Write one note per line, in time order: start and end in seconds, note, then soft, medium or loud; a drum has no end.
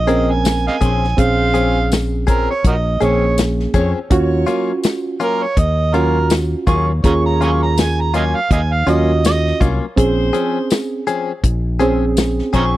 0.00 0.68 A#1 medium
0.00 0.33 D#5 medium
0.07 0.33 F3 medium
0.07 0.87 C4 medium
0.07 0.32 C4 medium
0.07 0.88 C#4 medium
0.07 0.32 C#4 medium
0.07 0.32 G#4 medium
0.07 0.88 A#4 medium
0.07 closed hi-hat medium
0.31 0.66 G#5 medium
0.45 snare loud
0.45 closed hi-hat medium
0.45 tambourine loud
0.67 0.76 D#5 medium
0.67 0.74 F5 medium
0.67 1.21 G#5 medium
0.67 snare soft
0.81 1.14 A#1 medium
0.81 1.06 F3 medium
0.81 1.06 C4 medium
0.81 0.97 C#4 medium
0.81 1.05 C#4 medium
0.81 1.05 G#4 medium
0.81 0.98 G#4 medium
0.81 0.98 C5 medium
0.81 kick medium
0.81 closed hi-hat medium
1.04 snare soft
1.17 2.47 A#1 medium
1.17 2.23 C4 medium
1.17 2.24 C#4 medium
1.17 2.24 G#4 medium
1.17 1.92 G#4 medium
1.17 1.92 C5 medium
1.17 1.90 F5 loud
1.17 kick loud
1.17 closed hi-hat medium
1.54 1.79 F3 medium
1.54 1.79 C4 medium
1.54 1.78 C#4 medium
1.54 1.78 G#4 medium
1.54 closed hi-hat medium
1.92 snare loud
1.92 closed hi-hat medium
1.92 tambourine loud
2.27 2.52 F3 soft
2.27 2.52 C4 medium
2.27 2.52 C#4 medium
2.27 2.51 G#4 medium
2.27 2.48 A#4 medium
2.27 kick medium
2.27 closed hi-hat medium
2.50 2.64 C#5 medium
2.64 2.97 A#1 loud
2.64 2.75 F#4 soft
2.64 2.74 A#4 soft
2.64 3.05 D#5 medium
2.64 kick medium
2.64 closed hi-hat medium
3.00 3.66 A#1 medium
3.00 3.26 F3 medium
3.00 3.80 A#3 medium
3.00 3.25 C4 medium
3.00 3.81 C#4 medium
3.00 3.25 C#4 medium
3.00 3.25 G#4 medium
3.00 3.81 G#4 medium
3.00 3.38 C#5 medium
3.00 closed hi-hat medium
3.38 snare loud
3.38 closed hi-hat medium
3.38 tambourine loud
3.60 snare soft
3.74 3.92 F2 medium
3.74 3.99 F3 medium
3.74 3.99 C4 medium
3.74 3.91 C#4 medium
3.74 3.98 C#4 medium
3.74 3.98 G#4 medium
3.74 3.91 G#4 medium
3.74 3.92 C#5 medium
3.74 kick medium
3.74 closed hi-hat medium
4.10 4.43 D#2 medium
4.10 4.84 F#3 medium
4.10 5.17 C#4 medium
4.10 5.17 F4 medium
4.10 5.17 F#4 medium
4.10 4.84 C#5 medium
4.10 kick loud
4.10 closed hi-hat medium
4.47 4.72 F#3 medium
4.47 4.72 A#3 medium
4.47 4.71 C#4 medium
4.47 4.71 F4 medium
4.47 closed hi-hat medium
4.83 snare loud
4.83 closed hi-hat medium
4.83 tambourine loud
5.20 5.45 F#3 soft
5.20 5.45 A#3 medium
5.20 5.45 C#4 medium
5.20 5.44 F4 medium
5.20 5.44 A#4 medium
5.20 closed hi-hat medium
5.43 5.60 C#5 medium
5.57 6.54 D#2 medium
5.57 5.96 D#5 medium
5.57 kick medium
5.57 closed hi-hat medium
5.94 6.19 F#3 medium
5.94 6.19 A#3 medium
5.94 6.74 C#4 medium
5.94 6.18 C#4 medium
5.94 6.18 F4 medium
5.94 6.74 F4 medium
5.94 6.74 F#4 medium
5.94 6.30 A#4 medium
5.94 closed hi-hat medium
6.30 snare loud
6.30 closed hi-hat medium
6.30 tambourine medium
6.67 6.99 D#2 medium
6.67 6.92 F#3 medium
6.67 6.92 A#3 medium
6.67 6.92 C#4 medium
6.67 6.91 F4 medium
6.67 6.83 F4 medium
6.67 6.83 F#4 medium
6.67 6.84 G#4 medium
6.67 6.87 C#6 loud
6.67 kick medium
6.67 closed hi-hat medium
7.03 8.33 D#2 medium
7.03 8.10 C#4 medium
7.03 7.77 F4 medium
7.03 8.10 F4 medium
7.03 8.11 G#4 medium
7.03 7.77 C#5 medium
7.03 7.12 G#5 medium
7.03 7.12 A#5 medium
7.03 7.24 C#6 medium
7.03 kick loud
7.03 closed hi-hat medium
7.26 7.40 A#5 loud
7.41 7.66 F#3 soft
7.41 7.65 A#3 medium
7.41 7.65 C#4 medium
7.41 7.65 F4 medium
7.41 7.51 G#5 medium
7.41 7.50 A#5 medium
7.41 7.61 C#6 medium
7.41 closed hi-hat medium
7.63 7.77 A#5 medium
7.77 8.02 G#5 medium
7.77 snare loud
7.77 closed hi-hat medium
7.77 tambourine medium
8.00 8.14 A#5 medium
8.14 8.39 F#3 medium
8.14 8.38 A#3 medium
8.14 8.38 C#4 medium
8.14 8.38 F4 medium
8.14 8.23 D#5 medium
8.14 8.23 F5 medium
8.14 8.37 G#5 medium
8.14 closed hi-hat medium
8.36 8.50 F5 medium
8.51 8.83 D#2 loud
8.51 8.59 D#5 medium
8.51 8.60 F5 medium
8.51 8.74 G#5 medium
8.51 kick medium
8.51 closed hi-hat medium
8.72 8.91 F5 medium
8.86 9.51 D#2 loud
8.86 9.12 F#3 medium
8.86 9.12 A#3 medium
8.86 9.67 C#4 medium
8.86 9.11 C#4 medium
8.86 9.11 F4 medium
8.86 9.67 F4 medium
8.86 9.67 F#4 medium
8.86 9.24 D#5 medium
8.86 closed hi-hat medium
9.25 9.61 D#5 loud
9.25 snare loud
9.25 closed hi-hat medium
9.25 tambourine loud
9.47 snare soft
9.61 9.79 C2 medium
9.61 9.85 F#3 soft
9.61 9.85 A#3 soft
9.61 9.85 C#4 medium
9.61 9.85 F4 medium
9.61 9.77 F4 medium
9.61 9.77 F#4 medium
9.61 9.77 C#5 medium
9.61 kick medium
9.61 closed hi-hat medium
9.96 10.30 A#1 medium
9.96 11.03 C4 medium
9.96 11.03 C#4 medium
9.96 10.71 G#4 medium
9.96 11.04 G#4 medium
9.96 10.71 C5 loud
9.96 kick loud
9.96 closed hi-hat medium
10.33 10.58 F3 medium
10.33 10.58 C4 medium
10.33 10.58 C#4 medium
10.33 10.57 G#4 medium
10.33 closed hi-hat medium
10.70 snare loud
10.70 closed hi-hat medium
10.70 tambourine medium
11.07 11.32 F3 medium
11.07 11.32 C4 medium
11.07 11.31 C#4 medium
11.07 11.31 G#4 medium
11.07 closed hi-hat medium
11.44 12.40 A#1 medium
11.44 kick medium
11.44 closed hi-hat medium
11.80 12.05 F3 medium
11.80 12.60 C4 medium
11.80 12.05 C4 medium
11.80 12.04 C#4 medium
11.80 12.61 C#4 medium
11.80 12.04 G#4 medium
11.80 12.61 G#4 medium
11.80 closed hi-hat medium
12.17 snare loud
12.17 closed hi-hat medium
12.17 tambourine loud
12.39 snare soft
12.53 12.77 A#1 medium
12.53 12.77 F3 medium
12.53 12.77 C4 medium
12.53 12.69 C#4 medium
12.53 12.77 C#4 medium
12.53 12.77 G#4 medium
12.53 12.70 G#4 medium
12.53 12.70 C5 medium
12.53 12.63 G#5 medium
12.53 12.64 A#5 medium
12.53 12.74 C#6 loud
12.53 kick medium
12.53 closed hi-hat medium